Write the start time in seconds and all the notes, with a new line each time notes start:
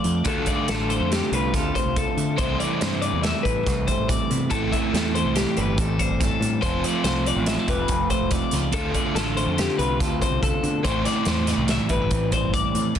Already playing: F2 F3 A3 C4 F4 G4 D5
0.04 F2 F3, closed hi-hat
0.24 D2 D3 A3 D4 F4 A4, kick, closed hi-hat
0.46 A3 D5, kick, closed hi-hat
0.68 A1 F4 A4, snare, closed hi-hat
0.89 A3 C5, closed hi-hat
1.00 F2
1.12 C4 G4, snare, closed hi-hat
1.32 C2 F4 B4, closed hi-hat
1.54 D2 F4 A4, kick, snare, closed hi-hat
1.75 C4 C5, kick, closed hi-hat
1.85 C2
1.96 D3 A4, kick, closed hi-hat
2.17 D3 A3, closed hi-hat
2.37 C2 C3 E3 G3 C4 E4 C5, kick, closed hi-hat
2.60 E3 D5, closed hi-hat
2.81 G2 C4 C5, snare, closed hi-hat
3.02 E3 D5, closed hi-hat
3.13 E2
3.23 A3 E5, snare, closed hi-hat
3.43 A1 E4 B4, kick, closed hi-hat
3.67 C2 C4, kick, snare, closed hi-hat
3.87 A3 C5, kick, closed hi-hat
3.99 A1
4.08 C3 D5, kick, closed hi-hat
4.30 B2 C3, closed hi-hat
4.50 A1 A2 E3 A3 C4 E4 A4, kick, closed hi-hat
4.72 E3 E5, kick, closed hi-hat
4.93 E2 C4 A4, snare, closed hi-hat
5.15 E3 C5, closed hi-hat
5.25 C2
5.36 G3 G4, snare, closed hi-hat
5.57 G1 G4 B4, closed hi-hat
5.78 A1 C4 A4, kick, closed hi-hat
5.99 G3 C5, kick, closed hi-hat
6.09 G1
6.21 A2 A4, kick, snare, closed hi-hat
6.41 G2 A2, closed hi-hat
6.61 F1 F2 F3 A3 C4 F4 C5, kick, closed hi-hat
6.84 F3 D5, closed hi-hat
7.04 C2 C4 C5, snare, closed hi-hat
7.26 F3 D5, closed hi-hat
7.36 A1
7.46 G3 E5, snare, closed hi-hat
7.59 A3
7.68 E1 G4 B4, kick, closed hi-hat
7.88 F1 C4, kick, closed hi-hat
8.10 A3 C5, kick, closed hi-hat
8.21 E1
8.31 F2 D5, kick, snare, closed hi-hat
8.51 C#2 F3, snare, closed hi-hat
8.72 D2 D3 A3 C4 D4 F4 A4, kick, closed hi-hat
8.77 F4
8.94 A3 D5, kick, closed hi-hat
9.15 A1 F4 A4, snare, closed hi-hat
9.37 A3 C5, closed hi-hat
9.47 F2
9.58 C4 G4, snare, closed hi-hat
9.79 C2 F4 B4, closed hi-hat
10.00 D2 F4 A4, kick, snare, closed hi-hat
10.21 C4 C5, kick, closed hi-hat
10.31 C2
10.42 C3 A4, kick, closed hi-hat
10.63 B2 D3, closed hi-hat
10.83 A1 A2 E3 A3 C4 E4 C5, kick, closed hi-hat
11.05 E3 D5, snare, closed hi-hat
11.25 E2 C4 C5, snare, closed hi-hat
11.47 E3 D5, snare, closed hi-hat
11.58 C2
11.68 G3 E5, snare, closed hi-hat
11.89 G1 E4 B4, kick, closed hi-hat
12.02 G4
12.11 A1 C4, kick, closed hi-hat
12.32 G3 C5, kick, closed hi-hat
12.43 G1
12.54 G2 D5, kick, closed hi-hat
12.75 F2 A2, closed hi-hat
12.95 E2, kick, crash